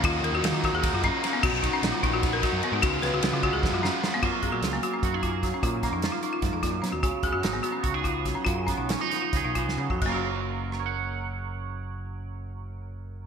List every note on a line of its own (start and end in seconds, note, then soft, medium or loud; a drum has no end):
0.03 0.20 D#2 loud
0.03 0.40 D#3 loud
0.03 0.25 F#3 medium
0.03 0.24 A#3 medium
0.03 0.23 D#4 loud
0.03 0.24 F4 loud
0.03 kick loud
0.03 ride loud
0.22 0.31 D#2 loud
0.22 0.42 F#3 medium
0.22 0.43 A#3 medium
0.22 0.44 D#4 medium
0.22 0.34 A#4 medium
0.22 ride medium
0.32 0.41 D#2 medium
0.32 0.54 F#4 medium
0.42 0.51 D#2 medium
0.42 0.82 D#3 loud
0.42 0.64 F#3 medium
0.42 0.63 A#3 loud
0.42 0.61 D#4 loud
0.42 snare loud
0.42 ride loud
0.52 0.69 D#3 medium
0.52 0.64 F4 medium
0.63 1.05 F#3 medium
0.63 1.03 A#3 medium
0.63 1.02 D#4 medium
0.63 0.74 F#4 medium
0.63 kick medium
0.63 snare soft
0.63 ride medium
0.73 0.89 D#2 medium
0.73 0.94 G#4 medium
0.83 kick loud
0.83 snare soft
0.83 ride loud
0.93 1.09 F#2 medium
0.93 1.04 F4 medium
1.03 1.24 F#3 medium
1.03 1.23 A#3 medium
1.03 1.23 C#4 medium
1.03 1.25 D#4 medium
1.03 kick medium
1.03 ride medium
1.23 1.42 D#3 medium
1.23 1.44 F#3 medium
1.23 1.43 A#3 medium
1.23 1.34 C#4 medium
1.23 1.43 D#4 medium
1.23 snare soft
1.23 ride medium
1.33 1.43 B3 medium
1.43 1.51 B1 loud
1.43 1.81 B2 loud
1.43 1.82 D#3 loud
1.43 1.64 F#3 loud
1.43 1.64 B3 loud
1.43 1.61 D#4 loud
1.43 1.63 F#4 loud
1.43 kick loud
1.43 crash loud
1.52 1.68 B1 medium
1.62 1.83 F#3 medium
1.62 1.84 B3 medium
1.62 1.84 D#4 medium
1.62 1.72 D#4 medium
1.62 kick medium
1.62 ride medium
1.73 1.93 C#4 medium
1.83 1.91 A#1 medium
1.83 2.23 B2 medium
1.83 2.23 D#3 loud
1.83 2.04 F#3 medium
1.83 2.03 B3 medium
1.83 2.01 D#4 loud
1.83 snare loud
1.83 ride loud
1.92 2.02 F4 medium
2.03 2.43 A#1 loud
2.03 2.45 F#3 medium
2.03 2.43 B3 medium
2.03 2.42 D#4 medium
2.03 2.13 D#4 medium
2.03 kick medium
2.03 ride medium
2.13 2.33 F#4 medium
2.23 kick loud
2.23 snare soft
2.23 ride loud
2.33 2.43 A#4 medium
2.43 2.63 F#3 medium
2.43 2.64 B3 medium
2.43 2.64 D#4 medium
2.43 2.63 F#4 medium
2.43 kick medium
2.43 snare soft
2.43 ride medium
2.52 2.60 F#2 medium
2.62 2.81 D#3 medium
2.62 2.83 F#3 medium
2.62 2.73 B3 medium
2.62 2.82 B3 medium
2.62 2.82 D#4 medium
2.62 ride medium
2.72 2.80 G#2 loud
2.72 2.83 D#4 medium
2.82 2.99 C#2 loud
2.82 3.22 C#3 medium
2.82 3.05 G#3 loud
2.82 3.04 B3 loud
2.82 3.02 F4 loud
2.82 3.02 F#4 loud
2.82 kick loud
2.82 ride loud
3.03 3.11 C#2 medium
3.03 3.23 G#3 medium
3.03 3.24 B3 medium
3.03 3.25 F4 medium
3.03 3.12 B4 medium
3.03 snare soft
3.03 ride medium
3.13 3.21 C#2 medium
3.13 3.33 F#4 medium
3.23 3.31 C#2 medium
3.23 3.63 C#3 medium
3.23 3.45 G#3 medium
3.23 3.43 B3 loud
3.23 3.42 F4 loud
3.23 snare loud
3.23 ride loud
3.33 3.49 C#3 medium
3.33 3.43 F4 medium
3.43 3.84 G#3 medium
3.43 3.83 B3 medium
3.43 3.82 F4 medium
3.43 3.53 F#4 medium
3.43 kick medium
3.43 ride medium
3.53 3.69 C#2 medium
3.53 3.73 G#4 medium
3.63 kick loud
3.63 snare medium
3.72 3.88 F#2 medium
3.72 3.83 F4 medium
3.83 4.03 G#3 medium
3.83 4.03 B3 medium
3.83 4.02 C#4 medium
3.83 4.04 F4 medium
3.83 snare medium
4.03 4.21 C#3 medium
4.03 4.22 G#3 medium
4.03 4.22 B3 medium
4.03 4.13 C#4 medium
4.03 4.23 F4 medium
4.03 snare loud
4.14 4.23 B3 medium
4.23 4.31 F#2 medium
4.23 5.63 F#2 medium
4.23 5.44 F#3 medium
4.23 4.43 A#3 medium
4.23 4.42 F4 medium
4.23 4.64 F4 medium
4.23 5.04 A#4 medium
4.23 kick loud
4.23 crash medium
4.43 4.51 F#2 medium
4.43 4.84 A#3 medium
4.43 4.52 G#4 medium
4.43 kick medium
4.43 closed hi-hat medium
4.52 4.60 A#2 medium
4.52 4.72 F#4 medium
4.62 4.78 C#2 medium
4.62 5.61 F4 medium
4.62 snare medium
4.62 closed hi-hat medium
4.73 4.83 A#3 medium
4.83 5.23 A#3 medium
4.83 4.93 F#4 medium
4.83 closed hi-hat soft
4.94 5.13 C#4 medium
5.03 5.51 F#2 medium
5.03 5.14 F#4 medium
5.03 kick loud
5.03 closed hi-hat medium
5.13 5.22 D#4 medium
5.13 5.63 G#4 soft
5.23 5.83 A#3 medium
5.23 5.43 F4 medium
5.23 kick medium
5.23 closed hi-hat medium
5.43 7.97 F#3 medium
5.43 5.53 F#4 medium
5.43 kick medium
5.43 snare soft
5.43 closed hi-hat soft
5.54 5.63 C#4 medium
5.63 6.42 F#2 medium
5.63 5.87 A#2 medium
5.63 5.83 F4 medium
5.63 kick loud
5.63 closed hi-hat medium
5.83 6.23 A#3 medium
5.83 5.93 C#4 medium
5.83 kick medium
5.83 snare soft
5.83 closed hi-hat soft
5.92 6.08 F2 medium
5.92 6.13 D#4 medium
6.02 7.01 F4 soft
6.02 snare medium
6.02 closed hi-hat medium
6.12 6.22 F4 medium
6.23 7.04 A#3 medium
6.23 6.33 D#4 medium
6.23 closed hi-hat soft
6.33 6.53 F4 medium
6.42 6.50 F#2 medium
6.42 6.62 G#2 medium
6.42 kick loud
6.42 snare soft
6.42 closed hi-hat medium
6.53 6.73 F2 medium
6.53 6.63 D#4 medium
6.63 6.81 A#2 medium
6.63 6.83 F4 medium
6.63 kick medium
6.63 snare soft
6.63 closed hi-hat medium
6.73 6.81 F#2 medium
6.82 7.02 B2 medium
6.82 6.91 F#3 medium
6.82 6.92 C#4 medium
6.82 snare soft
6.82 closed hi-hat medium
6.92 7.01 D#2 medium
6.92 7.02 F#4 medium
7.03 7.11 C#2 medium
7.03 8.25 C#3 medium
7.03 7.23 F#4 medium
7.03 kick loud
7.03 closed hi-hat medium
7.23 7.31 C#2 medium
7.23 7.64 B3 medium
7.23 7.33 G#4 medium
7.23 kick medium
7.23 closed hi-hat medium
7.33 7.41 F#2 medium
7.33 7.53 F#4 medium
7.43 7.60 G#1 medium
7.43 8.43 D#4 soft
7.43 snare loud
7.43 closed hi-hat medium
7.53 7.63 B3 medium
7.63 8.04 B3 medium
7.63 7.73 F#4 medium
7.63 closed hi-hat medium
7.72 7.93 C#4 medium
7.83 8.34 C#2 medium
7.83 7.94 F#4 medium
7.83 kick medium
7.83 closed hi-hat medium
7.94 8.04 D#4 medium
7.94 8.46 G#4 soft
8.04 8.44 B3 soft
8.04 8.25 F4 medium
8.04 kick medium
8.04 closed hi-hat medium
8.25 9.78 F#3 medium
8.25 8.36 F#4 medium
8.25 kick medium
8.25 snare soft
8.25 closed hi-hat medium
8.35 8.46 C#4 medium
8.45 8.72 F#2 medium
8.45 9.79 C#3 medium
8.45 8.66 F4 medium
8.45 kick loud
8.45 closed hi-hat medium
8.67 9.11 B3 medium
8.67 8.78 C#4 medium
8.67 kick medium
8.67 snare soft
8.67 closed hi-hat medium
8.78 8.95 B1 medium
8.78 8.99 D#4 medium
8.89 9.01 C#4 soft
8.89 snare loud
8.89 closed hi-hat medium
9.01 10.02 D#4 soft
9.01 9.11 F4 medium
9.11 9.57 B3 medium
9.11 9.22 D#4 medium
9.11 snare soft
9.11 closed hi-hat soft
9.22 9.44 F4 medium
9.33 9.42 C#2 medium
9.33 10.00 G#4 medium
9.33 kick medium
9.33 snare soft
9.33 closed hi-hat medium
9.44 9.67 B1 medium
9.44 9.55 D#4 medium
9.55 10.00 B3 medium
9.55 9.78 F4 medium
9.55 kick medium
9.55 closed hi-hat soft
9.67 9.76 C#2 medium
9.67 snare medium
9.77 9.87 C#3 medium
9.77 10.04 F#3 medium
9.77 9.90 C#4 medium
9.90 9.99 F2 medium
9.90 10.02 F#4 medium
9.90 kick medium
10.02 13.27 F#1 medium
10.02 13.27 F#2 medium
10.02 13.27 F#3 medium
10.02 kick medium
10.02 crash medium
10.06 13.27 A#3 medium
10.06 10.73 A#3 medium
10.06 10.79 F4 soft
10.10 13.27 C#4 medium
10.10 10.74 A#4 soft
10.14 13.27 F#4 medium
10.72 13.27 A#4 medium
10.72 cross-stick soft
10.80 13.27 C#5 medium
10.86 13.27 F#5 medium